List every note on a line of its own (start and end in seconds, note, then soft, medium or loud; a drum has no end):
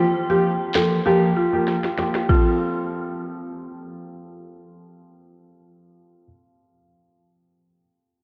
0.29 0.50 F3 medium
0.29 0.50 A#3 medium
0.29 0.50 G4 medium
0.29 0.39 G4 medium
0.74 0.97 F3 medium
0.74 0.97 A#3 medium
0.74 0.97 G4 medium
0.74 0.85 A4 medium
0.74 snare medium
0.74 clap medium
1.06 1.27 F3 medium
1.06 1.28 A#3 medium
1.06 1.16 G4 medium
1.06 1.28 G4 loud
1.37 1.47 F4 medium
1.53 1.73 F3 medium
1.53 1.74 A#3 medium
1.53 1.74 G4 medium
1.68 snare medium
1.84 snare medium
1.98 2.20 F3 medium
1.98 2.20 A#3 medium
1.98 2.20 G4 medium
1.98 snare medium
2.15 snare medium
2.29 6.23 F3 medium
2.29 6.23 C4 medium
2.29 4.11 F4 medium
2.29 6.23 A4 medium
2.29 kick loud
2.29 crash medium